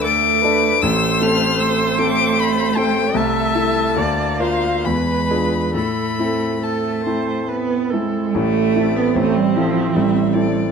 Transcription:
0.00 0.84 D2 loud
0.00 0.44 A3 medium
0.00 0.45 D4 medium
0.00 0.45 A4 medium
0.00 0.44 A4 medium
0.00 0.83 D6 loud
0.04 0.80 A3 medium
0.42 0.78 A3 medium
0.42 0.79 D4 medium
0.42 0.79 A4 medium
0.42 0.83 B4 medium
0.81 1.20 A1 medium
0.81 1.58 A3 medium
0.81 3.17 C5 loud
0.81 1.24 E6 loud
1.21 1.95 A3 medium
1.21 1.95 C4 medium
1.21 1.95 A4 medium
1.21 1.62 F6 loud
1.59 3.12 A3 medium
1.59 2.00 E6 loud
1.99 2.73 A3 medium
1.99 2.73 C4 medium
1.99 2.73 A4 medium
1.99 2.41 D6 loud
2.39 2.78 B5 loud
2.76 3.12 A3 medium
2.76 3.12 C4 medium
2.76 3.12 A4 medium
2.76 3.18 G5 loud
3.14 3.54 C2 medium
3.14 3.99 A3 medium
3.14 3.96 E5 loud
3.14 4.40 A5 loud
3.55 3.92 A3 medium
3.55 3.92 E4 medium
3.55 3.92 A4 medium
3.96 4.39 D2 medium
3.96 4.88 A#3 medium
3.96 4.42 D5 medium
4.40 4.81 D4 medium
4.40 4.82 F4 medium
4.40 4.82 A#4 medium
4.40 4.88 C5 medium
4.40 4.87 F5 loud
4.85 5.29 E2 medium
4.85 5.75 G#3 medium
4.85 5.73 B4 medium
4.85 5.74 B5 medium
5.30 5.70 D4 medium
5.30 5.71 F4 medium
5.30 5.71 G#4 medium
5.74 6.17 A2 medium
5.74 6.61 A3 medium
5.74 6.51 A4 medium
5.74 6.65 B5 loud
6.19 7.02 C4 medium
6.19 7.02 E4 soft
6.19 7.02 A4 medium
6.61 7.47 A3 medium
6.61 7.02 A4 medium
6.61 7.49 A5 medium
7.04 7.88 C4 medium
7.04 7.88 E4 medium
7.04 7.88 A4 medium
7.04 7.50 C5 medium
7.48 7.94 B3 medium
7.48 7.92 B4 medium
7.90 8.36 G#3 medium
7.90 8.30 C4 soft
7.90 8.30 E4 medium
7.90 8.33 A4 medium
7.90 8.30 A4 soft
8.34 8.74 A1 medium
8.34 8.74 A2 medium
8.34 8.98 A3 loud
8.34 9.18 D5 medium
8.76 9.12 C4 medium
8.76 9.12 E4 medium
8.76 9.12 A4 medium
8.96 9.18 B3 medium
9.15 9.54 A1 medium
9.15 9.54 A2 medium
9.15 9.38 A3 loud
9.15 10.68 C4 medium
9.15 9.94 C5 medium
9.37 9.57 G3 loud
9.56 9.96 F3 loud
9.56 9.91 C4 medium
9.56 9.91 E4 medium
9.56 9.91 A4 medium
9.94 10.33 A1 medium
9.94 10.33 A2 medium
9.94 10.72 G3 medium
9.94 10.35 E5 medium
10.34 10.68 C4 medium
10.34 10.69 E4 soft
10.34 10.69 A4 medium
10.34 10.72 D5 medium

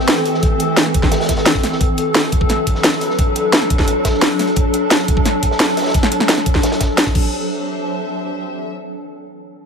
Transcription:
0.00 1.77 E3 medium
0.00 1.81 A3 medium
0.00 1.77 C4 medium
0.00 1.81 G4 medium
0.00 7.11 A4 medium
0.00 1.81 C5 medium
0.00 1.80 E5 medium
0.08 snare loud
0.08 closed hi-hat medium
0.17 snare medium
0.25 snare soft
0.25 closed hi-hat medium
0.25 open hi-hat medium
0.34 snare soft
0.43 kick loud
0.43 closed hi-hat medium
0.60 closed hi-hat medium
0.77 snare loud
0.77 closed hi-hat medium
0.86 snare soft
0.94 kick loud
0.94 closed hi-hat medium
1.03 kick loud
1.03 snare soft
1.11 snare loud
1.11 closed hi-hat medium
1.20 snare medium
1.20 closed hi-hat medium
1.23 snare medium
1.23 closed hi-hat medium
1.29 kick medium
1.29 snare loud
1.29 closed hi-hat medium
1.37 snare loud
1.37 closed hi-hat medium
1.46 snare loud
1.46 closed hi-hat medium
1.55 kick medium
1.55 snare medium
1.63 snare medium
1.63 snare soft
1.63 closed hi-hat medium
1.63 open hi-hat medium
1.72 snare medium
1.81 7.15 D3 medium
1.81 7.11 F#3 medium
1.81 7.11 D4 medium
1.81 kick loud
1.81 closed hi-hat medium
1.92 7.15 F#4 medium
1.98 closed hi-hat medium
2.15 snare loud
2.15 closed hi-hat medium
2.24 7.15 E5 medium
2.24 snare soft
2.32 kick loud
2.32 closed hi-hat medium
2.41 kick loud
2.49 snare soft
2.49 closed hi-hat medium
2.60 4.79 B4 medium
2.67 kick medium
2.67 closed hi-hat medium
2.75 snare soft
2.84 snare loud
2.84 closed hi-hat medium
2.92 snare medium
3.01 snare soft
3.01 closed hi-hat medium
3.01 open hi-hat medium
3.10 snare soft
3.19 kick loud
3.19 closed hi-hat medium
3.35 closed hi-hat medium
3.53 snare loud
3.53 closed hi-hat medium
3.62 snare soft
3.70 kick loud
3.70 closed hi-hat medium
3.79 kick loud
3.79 snare soft
3.88 closed hi-hat medium
3.88 closed hi-hat loud
4.05 kick medium
4.05 snare loud
4.05 closed hi-hat medium
4.14 snare soft
4.22 snare loud
4.22 closed hi-hat medium
4.39 snare soft
4.39 open hi-hat medium
4.47 snare soft
4.47 closed hi-hat medium
4.56 kick loud
4.56 closed hi-hat medium
4.69 7.15 A4 medium
4.74 closed hi-hat medium
4.90 snare loud
4.90 closed hi-hat medium
5.00 snare soft
5.08 kick loud
5.08 closed hi-hat loud
5.08 closed hi-hat medium
5.17 kick loud
5.25 snare soft
5.25 closed hi-hat medium
5.43 kick medium
5.43 closed hi-hat loud
5.43 closed hi-hat medium
5.51 snare soft
5.60 snare loud
5.60 closed hi-hat medium
5.69 snare medium
5.77 snare medium
5.77 closed hi-hat medium
5.77 open hi-hat medium
5.82 snare medium
5.82 closed hi-hat medium
5.86 snare medium
5.86 closed hi-hat medium
5.90 snare medium
5.90 closed hi-hat medium
5.94 kick loud
5.94 closed hi-hat medium
6.03 snare medium
6.12 closed hi-hat loud
6.12 closed hi-hat medium
6.20 snare medium
6.29 snare loud
6.29 closed hi-hat medium
6.38 snare soft
6.46 kick loud
6.46 closed hi-hat medium
6.46 closed hi-hat loud
6.55 kick loud
6.55 snare soft
6.62 snare loud
6.62 closed hi-hat medium
6.72 snare loud
6.72 closed hi-hat medium
6.80 kick medium
6.80 snare loud
6.80 closed hi-hat loud
6.80 closed hi-hat medium
6.98 snare loud
6.98 closed hi-hat medium
7.06 kick medium
7.06 snare soft
7.15 8.49 G4 medium
7.15 kick loud
7.15 crash medium
7.20 8.49 C5 medium
7.43 8.66 E5 medium

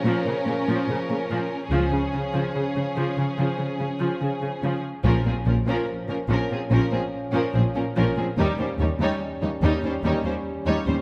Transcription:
0.00 1.53 F3 soft
0.00 1.53 C#4 medium
0.00 1.67 C#4 medium
0.00 1.68 A#4 soft
0.04 0.12 A#2 medium
0.04 0.25 F3 medium
0.25 0.33 A#2 soft
0.25 0.35 C#3 soft
0.46 0.54 A#2 soft
0.46 0.56 C#3 soft
0.67 0.75 A#2 soft
0.67 0.87 F3 soft
0.88 0.96 A#2 soft
0.88 0.97 C#3 soft
1.09 1.17 A#2 soft
1.09 1.18 C#3 soft
1.30 1.38 A#2 soft
1.30 1.50 F3 soft
1.70 1.91 C#2 soft
1.70 1.79 C#3 soft
1.70 4.68 F3 soft
1.70 1.91 F3 soft
1.70 4.68 C#4 soft
1.70 4.81 C#4 soft
1.70 4.80 G#4 soft
1.91 1.99 C#3 soft
1.91 2.02 C#3 soft
2.12 2.21 C#3 soft
2.34 2.42 C#3 soft
2.34 2.53 F3 soft
2.55 2.63 C#3 soft
2.76 2.84 C#3 soft
2.96 3.04 C#3 soft
2.96 3.16 F3 soft
3.17 3.25 C#3 soft
3.17 3.26 C#3 soft
3.38 3.46 C#3 soft
3.38 3.57 F3 soft
3.58 3.66 C#3 soft
3.78 3.86 C#3 soft
3.78 3.88 C#3 soft
4.00 4.08 C#3 soft
4.00 4.19 F3 soft
4.21 4.29 C#3 soft
4.21 4.30 C#3 soft
4.42 4.50 C#3 soft
4.42 4.51 C#3 soft
4.63 4.71 C#3 soft
4.63 4.82 F3 soft
5.04 5.13 A#1 soft
5.04 5.12 A#2 soft
5.04 6.25 A#2 soft
5.04 5.24 F3 soft
5.04 8.34 F3 soft
5.04 8.33 C#4 medium
5.04 5.24 C#4 medium
5.04 5.24 A#4 soft
5.04 taiko soft
5.26 5.34 A#2 soft
5.26 5.34 F3 soft
5.26 5.34 C4 soft
5.26 5.34 G#4 soft
5.46 5.54 A#1 soft
5.46 5.55 A#1 soft
5.46 5.54 A#2 soft
5.46 5.55 F3 soft
5.46 5.54 C#4 soft
5.46 5.56 A#4 soft
5.67 5.75 A#2 soft
5.67 5.87 F3 soft
5.67 5.87 C#4 soft
5.67 5.87 A#4 soft
6.08 6.16 A#2 soft
6.08 6.17 F3 soft
6.08 6.18 C#4 soft
6.08 6.18 A#4 soft
6.28 6.37 A#1 soft
6.28 6.38 A#1 soft
6.28 6.36 A#2 soft
6.28 6.49 F3 soft
6.28 6.49 C#4 soft
6.28 6.50 A#4 medium
6.50 6.58 A#2 soft
6.50 6.59 F3 soft
6.50 6.58 C4 soft
6.50 6.60 G#4 soft
6.70 6.79 A#1 soft
6.70 6.80 A#1 medium
6.70 6.78 A#2 soft
6.70 6.91 F3 soft
6.70 6.90 C#4 soft
6.70 6.91 A#4 medium
6.92 7.00 A#2 soft
6.92 7.00 F3 soft
6.92 7.00 C4 soft
6.92 7.01 G#4 soft
7.33 7.42 A#2 soft
7.33 7.52 F3 soft
7.33 7.53 C#4 soft
7.33 7.53 A#4 soft
7.54 7.62 A#1 soft
7.54 7.63 A#1 soft
7.54 7.62 A#2 soft
7.54 7.62 F3 soft
7.54 7.62 C4 soft
7.54 7.62 G#4 soft
7.74 7.84 A#2 soft
7.74 7.84 F3 soft
7.74 7.82 C#4 soft
7.74 7.85 A#4 soft
7.96 8.05 A#1 soft
7.96 8.04 A#2 soft
7.96 8.15 F3 soft
7.96 8.15 C#4 soft
7.96 8.15 A#4 soft
8.17 8.25 A#2 soft
8.17 8.25 F3 soft
8.17 8.25 C4 soft
8.17 8.25 G#4 soft
8.36 8.45 D#2 medium
8.36 8.46 D#2 soft
8.36 11.02 G3 soft
8.36 8.58 G3 medium
8.36 11.02 C#4 medium
8.36 8.57 D#4 soft
8.36 8.57 C#5 soft
8.58 8.66 D#2 soft
8.58 8.69 G3 soft
8.58 8.67 C#4 soft
8.58 8.67 C5 soft
8.79 8.87 D#2 soft
8.79 8.88 D#2 soft
8.79 8.89 G3 soft
8.79 8.88 D#4 soft
8.79 8.88 C#5 soft
9.00 9.08 D#2 medium
9.00 9.20 G3 soft
9.00 9.20 D#4 soft
9.00 9.20 C#5 medium
9.42 9.50 D#2 soft
9.42 9.52 G3 soft
9.42 9.50 D#4 soft
9.42 9.51 C#5 soft
9.62 9.70 D#2 medium
9.62 9.71 D#2 medium
9.62 9.82 G3 medium
9.62 9.82 D#4 medium
9.62 9.82 C#5 soft
9.83 9.91 D#2 soft
9.83 9.92 G3 soft
9.83 9.93 C#4 soft
9.83 9.93 C5 soft
10.04 10.12 D#2 medium
10.04 10.12 D#2 soft
10.04 10.12 D#2 medium
10.04 10.24 G3 soft
10.04 10.24 D#4 soft
10.04 10.24 C#5 soft
10.24 10.32 D#2 soft
10.24 10.34 G3 soft
10.24 10.33 C#4 soft
10.24 10.33 C5 soft
10.66 10.75 D#2 medium
10.66 10.86 G3 soft
10.66 10.86 D#4 soft
10.66 10.85 C#5 soft
10.86 10.95 D#2 soft
10.86 10.96 D#2 soft
10.86 10.95 D#2 soft
10.86 10.95 G3 soft
10.86 10.95 C#4 soft
10.86 10.94 C5 soft

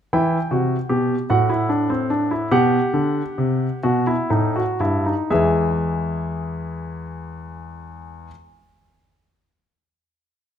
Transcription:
0.13 0.37 E3 medium
0.13 0.37 E4 medium
0.13 1.25 G5 medium
0.51 0.75 C3 medium
0.51 0.75 F#4 medium
0.89 1.14 B2 medium
0.89 1.14 G4 medium
1.30 2.47 A2 medium
1.30 1.49 F#4 medium
1.30 2.47 F#5 medium
1.50 1.69 E4 medium
1.69 1.89 D4 medium
1.90 2.09 C4 medium
2.10 2.30 D4 medium
2.31 2.51 E4 medium
2.51 2.77 B2 medium
2.51 3.78 G4 medium
2.51 5.26 F#5 medium
2.93 3.20 D3 medium
3.38 3.66 C3 medium
3.83 4.12 B2 medium
3.83 4.05 F#4 medium
4.07 4.29 E4 medium
4.30 4.60 A2 medium
4.30 4.53 D#4 medium
4.56 4.79 F#4 medium
4.80 5.11 G2 medium
4.80 5.04 E4 medium
5.06 5.30 D#4 medium
5.30 8.26 E2 medium
5.30 8.30 E3 medium
5.30 8.29 G#3 medium
5.30 8.26 G#4 medium
5.30 8.27 E5 medium

